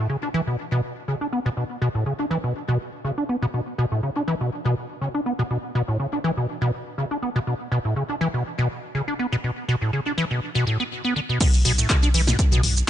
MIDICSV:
0, 0, Header, 1, 4, 480
1, 0, Start_track
1, 0, Key_signature, 2, "minor"
1, 0, Tempo, 491803
1, 1532, Time_signature, 4, 2, 24, 8
1, 12588, End_track
2, 0, Start_track
2, 0, Title_t, "Acid bass"
2, 0, Program_c, 0, 38
2, 92, Note_on_c, 0, 49, 79
2, 163, Note_off_c, 0, 49, 0
2, 222, Note_on_c, 0, 62, 74
2, 282, Note_off_c, 0, 62, 0
2, 333, Note_on_c, 0, 52, 97
2, 403, Note_off_c, 0, 52, 0
2, 460, Note_on_c, 0, 47, 74
2, 553, Note_off_c, 0, 47, 0
2, 701, Note_on_c, 0, 47, 97
2, 793, Note_off_c, 0, 47, 0
2, 1054, Note_on_c, 0, 49, 81
2, 1123, Note_off_c, 0, 49, 0
2, 1182, Note_on_c, 0, 62, 75
2, 1243, Note_off_c, 0, 62, 0
2, 1293, Note_on_c, 0, 59, 73
2, 1363, Note_off_c, 0, 59, 0
2, 1422, Note_on_c, 0, 47, 100
2, 1458, Note_off_c, 0, 47, 0
2, 1532, Note_on_c, 0, 47, 84
2, 1603, Note_off_c, 0, 47, 0
2, 1772, Note_on_c, 0, 47, 100
2, 1843, Note_off_c, 0, 47, 0
2, 1900, Note_on_c, 0, 45, 80
2, 1993, Note_off_c, 0, 45, 0
2, 2011, Note_on_c, 0, 49, 81
2, 2082, Note_off_c, 0, 49, 0
2, 2140, Note_on_c, 0, 62, 71
2, 2202, Note_off_c, 0, 62, 0
2, 2250, Note_on_c, 0, 52, 99
2, 2322, Note_off_c, 0, 52, 0
2, 2380, Note_on_c, 0, 47, 72
2, 2472, Note_off_c, 0, 47, 0
2, 2619, Note_on_c, 0, 47, 95
2, 2712, Note_off_c, 0, 47, 0
2, 2971, Note_on_c, 0, 49, 81
2, 3042, Note_off_c, 0, 49, 0
2, 3100, Note_on_c, 0, 62, 73
2, 3162, Note_off_c, 0, 62, 0
2, 3212, Note_on_c, 0, 59, 75
2, 3282, Note_off_c, 0, 59, 0
2, 3341, Note_on_c, 0, 47, 103
2, 3378, Note_off_c, 0, 47, 0
2, 3453, Note_on_c, 0, 47, 82
2, 3523, Note_off_c, 0, 47, 0
2, 3693, Note_on_c, 0, 47, 97
2, 3763, Note_off_c, 0, 47, 0
2, 3823, Note_on_c, 0, 45, 75
2, 3914, Note_off_c, 0, 45, 0
2, 3933, Note_on_c, 0, 49, 78
2, 4003, Note_off_c, 0, 49, 0
2, 4062, Note_on_c, 0, 62, 72
2, 4123, Note_off_c, 0, 62, 0
2, 4173, Note_on_c, 0, 52, 93
2, 4243, Note_off_c, 0, 52, 0
2, 4302, Note_on_c, 0, 47, 75
2, 4393, Note_off_c, 0, 47, 0
2, 4541, Note_on_c, 0, 47, 98
2, 4633, Note_off_c, 0, 47, 0
2, 4893, Note_on_c, 0, 49, 78
2, 4963, Note_off_c, 0, 49, 0
2, 5021, Note_on_c, 0, 62, 75
2, 5082, Note_off_c, 0, 62, 0
2, 5133, Note_on_c, 0, 59, 74
2, 5203, Note_off_c, 0, 59, 0
2, 5261, Note_on_c, 0, 47, 98
2, 5297, Note_off_c, 0, 47, 0
2, 5373, Note_on_c, 0, 47, 83
2, 5443, Note_off_c, 0, 47, 0
2, 5612, Note_on_c, 0, 47, 98
2, 5683, Note_off_c, 0, 47, 0
2, 5741, Note_on_c, 0, 45, 79
2, 5833, Note_off_c, 0, 45, 0
2, 5852, Note_on_c, 0, 49, 80
2, 5923, Note_off_c, 0, 49, 0
2, 5980, Note_on_c, 0, 62, 76
2, 6042, Note_off_c, 0, 62, 0
2, 6092, Note_on_c, 0, 52, 97
2, 6162, Note_off_c, 0, 52, 0
2, 6219, Note_on_c, 0, 47, 76
2, 6312, Note_off_c, 0, 47, 0
2, 6458, Note_on_c, 0, 47, 97
2, 6551, Note_off_c, 0, 47, 0
2, 6811, Note_on_c, 0, 49, 77
2, 6882, Note_off_c, 0, 49, 0
2, 6939, Note_on_c, 0, 62, 77
2, 7001, Note_off_c, 0, 62, 0
2, 7051, Note_on_c, 0, 59, 77
2, 7122, Note_off_c, 0, 59, 0
2, 7179, Note_on_c, 0, 47, 99
2, 7217, Note_off_c, 0, 47, 0
2, 7292, Note_on_c, 0, 47, 81
2, 7362, Note_off_c, 0, 47, 0
2, 7530, Note_on_c, 0, 47, 96
2, 7602, Note_off_c, 0, 47, 0
2, 7660, Note_on_c, 0, 45, 74
2, 7752, Note_off_c, 0, 45, 0
2, 7771, Note_on_c, 0, 49, 79
2, 7842, Note_off_c, 0, 49, 0
2, 7899, Note_on_c, 0, 62, 74
2, 7961, Note_off_c, 0, 62, 0
2, 8011, Note_on_c, 0, 52, 102
2, 8082, Note_off_c, 0, 52, 0
2, 8138, Note_on_c, 0, 47, 73
2, 8231, Note_off_c, 0, 47, 0
2, 8379, Note_on_c, 0, 47, 95
2, 8472, Note_off_c, 0, 47, 0
2, 8732, Note_on_c, 0, 49, 81
2, 8803, Note_off_c, 0, 49, 0
2, 8859, Note_on_c, 0, 62, 77
2, 8921, Note_off_c, 0, 62, 0
2, 8972, Note_on_c, 0, 59, 73
2, 9043, Note_off_c, 0, 59, 0
2, 9101, Note_on_c, 0, 47, 98
2, 9137, Note_off_c, 0, 47, 0
2, 9212, Note_on_c, 0, 47, 81
2, 9283, Note_off_c, 0, 47, 0
2, 9452, Note_on_c, 0, 47, 102
2, 9522, Note_off_c, 0, 47, 0
2, 9579, Note_on_c, 0, 45, 76
2, 9672, Note_off_c, 0, 45, 0
2, 9692, Note_on_c, 0, 49, 82
2, 9763, Note_off_c, 0, 49, 0
2, 9820, Note_on_c, 0, 62, 76
2, 9882, Note_off_c, 0, 62, 0
2, 9932, Note_on_c, 0, 52, 97
2, 10003, Note_off_c, 0, 52, 0
2, 10060, Note_on_c, 0, 47, 77
2, 10152, Note_off_c, 0, 47, 0
2, 10299, Note_on_c, 0, 47, 93
2, 10392, Note_off_c, 0, 47, 0
2, 10411, Note_on_c, 0, 45, 75
2, 10517, Note_off_c, 0, 45, 0
2, 10540, Note_on_c, 0, 59, 74
2, 10577, Note_off_c, 0, 59, 0
2, 10780, Note_on_c, 0, 59, 72
2, 10872, Note_off_c, 0, 59, 0
2, 10892, Note_on_c, 0, 50, 77
2, 10935, Note_off_c, 0, 50, 0
2, 11022, Note_on_c, 0, 47, 76
2, 11113, Note_off_c, 0, 47, 0
2, 11133, Note_on_c, 0, 47, 84
2, 11203, Note_off_c, 0, 47, 0
2, 11371, Note_on_c, 0, 47, 102
2, 11442, Note_off_c, 0, 47, 0
2, 11499, Note_on_c, 0, 45, 83
2, 11592, Note_off_c, 0, 45, 0
2, 11611, Note_on_c, 0, 49, 84
2, 11682, Note_off_c, 0, 49, 0
2, 11739, Note_on_c, 0, 62, 78
2, 11801, Note_off_c, 0, 62, 0
2, 11851, Note_on_c, 0, 52, 101
2, 11922, Note_off_c, 0, 52, 0
2, 11980, Note_on_c, 0, 47, 80
2, 12072, Note_off_c, 0, 47, 0
2, 12220, Note_on_c, 0, 47, 96
2, 12312, Note_off_c, 0, 47, 0
2, 12588, End_track
3, 0, Start_track
3, 0, Title_t, "Sub bass"
3, 0, Program_c, 1, 38
3, 11372, Note_on_c, 1, 35, 107
3, 11558, Note_off_c, 1, 35, 0
3, 11853, Note_on_c, 1, 35, 79
3, 12038, Note_off_c, 1, 35, 0
3, 12332, Note_on_c, 1, 35, 92
3, 12518, Note_off_c, 1, 35, 0
3, 12588, End_track
4, 0, Start_track
4, 0, Title_t, "Drums"
4, 11132, Note_on_c, 9, 36, 119
4, 11132, Note_on_c, 9, 42, 99
4, 11132, Note_on_c, 9, 49, 107
4, 11137, Note_on_c, 9, 82, 55
4, 11229, Note_off_c, 9, 42, 0
4, 11229, Note_off_c, 9, 49, 0
4, 11230, Note_off_c, 9, 36, 0
4, 11234, Note_off_c, 9, 82, 0
4, 11260, Note_on_c, 9, 42, 41
4, 11265, Note_on_c, 9, 82, 34
4, 11357, Note_off_c, 9, 42, 0
4, 11362, Note_off_c, 9, 82, 0
4, 11371, Note_on_c, 9, 46, 109
4, 11469, Note_off_c, 9, 46, 0
4, 11500, Note_on_c, 9, 42, 43
4, 11505, Note_on_c, 9, 82, 69
4, 11598, Note_off_c, 9, 42, 0
4, 11602, Note_off_c, 9, 82, 0
4, 11611, Note_on_c, 9, 42, 97
4, 11612, Note_on_c, 9, 36, 122
4, 11614, Note_on_c, 9, 39, 124
4, 11616, Note_on_c, 9, 82, 58
4, 11709, Note_off_c, 9, 42, 0
4, 11710, Note_off_c, 9, 36, 0
4, 11711, Note_off_c, 9, 39, 0
4, 11714, Note_off_c, 9, 82, 0
4, 11740, Note_on_c, 9, 42, 44
4, 11745, Note_on_c, 9, 82, 36
4, 11837, Note_off_c, 9, 42, 0
4, 11842, Note_off_c, 9, 82, 0
4, 11851, Note_on_c, 9, 46, 105
4, 11948, Note_off_c, 9, 46, 0
4, 11980, Note_on_c, 9, 38, 60
4, 11980, Note_on_c, 9, 42, 43
4, 11980, Note_on_c, 9, 45, 96
4, 11985, Note_on_c, 9, 82, 69
4, 12077, Note_off_c, 9, 38, 0
4, 12077, Note_off_c, 9, 42, 0
4, 12077, Note_off_c, 9, 45, 0
4, 12082, Note_off_c, 9, 82, 0
4, 12091, Note_on_c, 9, 42, 98
4, 12092, Note_on_c, 9, 36, 114
4, 12096, Note_on_c, 9, 82, 55
4, 12188, Note_off_c, 9, 42, 0
4, 12189, Note_off_c, 9, 36, 0
4, 12193, Note_off_c, 9, 82, 0
4, 12220, Note_on_c, 9, 42, 42
4, 12220, Note_on_c, 9, 45, 95
4, 12225, Note_on_c, 9, 82, 33
4, 12318, Note_off_c, 9, 42, 0
4, 12318, Note_off_c, 9, 45, 0
4, 12322, Note_off_c, 9, 82, 0
4, 12331, Note_on_c, 9, 45, 84
4, 12331, Note_on_c, 9, 46, 108
4, 12429, Note_off_c, 9, 45, 0
4, 12429, Note_off_c, 9, 46, 0
4, 12459, Note_on_c, 9, 42, 43
4, 12464, Note_on_c, 9, 82, 70
4, 12557, Note_off_c, 9, 42, 0
4, 12562, Note_off_c, 9, 82, 0
4, 12588, End_track
0, 0, End_of_file